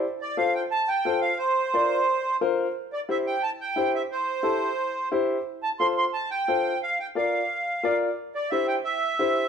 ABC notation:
X:1
M:4/4
L:1/8
Q:1/4=177
K:F
V:1 name="Accordion"
z d f g a g2 f | c6 z2 | z d e g a g2 e | c6 z2 |
z a c' c' a g3 | f g f4- f z | z d e g e4 |]
V:2 name="Upright piano"
z2 [FAc] z3 [FAc] z | z2 [FBd] z3 [FBc] z | z2 [EGc] z3 [EGc] z | z2 [EGA] z3 [EGc] z |
z2 [FAc] z3 [FAc] z | z2 [FBd] z3 [FBd] z | z2 [EGc] z3 [EGc] z |]